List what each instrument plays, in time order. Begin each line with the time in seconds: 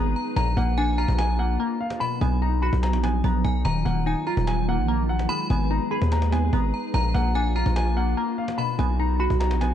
Already playing: 808-style bass G#1, ambient pad G#3 D#4 G#4 B4, synth pluck B3 D#4 G#4, grand piano A#5
0.16 synth bell A#5, cajon slap
0.36 808-style bass A#1, synth pluck A#2, ambient pad A#3 D4 F4, grand piano A#5, synth bell A#5, cajon bass
0.57 808-style bass A#1, synth pluck A#3, grand piano F#5, cajon bass
0.78 synth pluck D4, synth bell G#5, grand piano G#5, cajon slap
0.93 cajon slap
0.98 synth pluck F4, grand piano A#5, synth bell A#5, cajon slap
1.08 808-style bass A#1, cajon bass
1.18 grand piano G#5, synth bell A#5, cajon slap
1.39 synth pluck A#3, grand piano F#5, cajon slap
1.60 synth pluck A#3, grand piano A#5, cajon slap
1.80 grand piano F5, cajon slap
1.90 cajon slap
2.00 synth pluck B2, ambient pad F#3 B3 D#4, grand piano B5, synth bell B5, cajon slap
2.21 808-style bass B1, synth pluck B3, grand piano G#5, cajon bass
2.42 synth pluck D#4, grand piano A#5, cajon slap
2.52 cajon slap
2.62 synth pluck F#4, grand piano B5, cajon slap
2.73 808-style bass B1, cajon bass
2.83 grand piano A#5, cajon slap
2.93 808-style bass A#1, cajon slap
3.03 synth pluck B3, grand piano G#5, cajon slap
3.24 808-style bass A#1, synth pluck B3, grand piano A#5, cajon bass
3.44 808-style bass B1, synth bell G#5, cajon bass
3.65 808-style bass D#1, ambient pad D#3 F4, synth pluck D#3, synth bell A#5, grand piano A#5, cajon bass
3.85 808-style bass D#1, synth pluck A#3, grand piano F#5, cajon bass
4.06 synth pluck D#4, grand piano G#5, synth bell G#5, cajon slap
4.11 cajon slap
4.17 cajon slap
4.22 cajon slap
4.27 synth pluck F4, synth bell A#5, grand piano A#5, cajon slap
4.37 808-style bass D#1, cajon bass
4.47 grand piano G#5, synth bell A#5, cajon slap
4.68 synth pluck A#3, grand piano F#5, cajon slap
4.78 808-style bass A#1
4.88 synth pluck A#3, grand piano A#5, cajon slap
5.09 grand piano F#5, cajon slap
5.19 cajon slap
5.29 ambient pad G#3 G#4 B4, synth pluck G#3, grand piano B5, synth bell B5, cajon slap
5.50 808-style bass G#1, synth pluck B3, grand piano G#5, cajon bass
5.71 synth pluck D#4, grand piano A#5, cajon slap
5.91 synth pluck G#4, grand piano B5, cajon slap
6.02 808-style bass D#2, cajon bass
6.12 grand piano A#5, cajon slap
6.22 cajon slap
6.32 synth pluck B3, grand piano G#5, cajon slap
6.53 808-style bass G#1, synth pluck B3, grand piano A#5, cajon bass
6.73 synth bell A#5, cajon slap
6.94 808-style bass A#1, synth pluck A#2, ambient pad A#3 D4 F4, grand piano A#5, synth bell A#5, cajon bass
7.14 808-style bass A#1, synth pluck A#3, grand piano F#5, cajon bass
7.35 synth pluck D4, grand piano G#5, synth bell G#5, cajon slap
7.40 cajon slap
7.45 cajon slap
7.51 cajon slap
7.56 synth pluck F4, synth bell A#5, grand piano A#5
7.66 808-style bass A#1, cajon bass
7.76 grand piano G#5, synth bell A#5, cajon slap
7.97 synth pluck A#3, grand piano F#5, cajon slap
8.17 synth pluck A#3, grand piano A#5, cajon slap
8.38 grand piano F5, cajon slap
8.48 cajon slap
8.58 synth pluck B2, ambient pad B3 D#4 F#4, grand piano B5, synth bell B5, cajon slap
8.79 808-style bass B1, synth pluck B3, grand piano G#5, cajon bass
8.99 synth pluck D#4, grand piano A#5, cajon slap
9.10 cajon slap
9.20 synth pluck F#4, grand piano B5, cajon slap
9.30 808-style bass B1, cajon bass
9.40 grand piano A#5, cajon slap
9.51 808-style bass A#1, cajon slap
9.61 synth pluck B3, grand piano G#5, cajon slap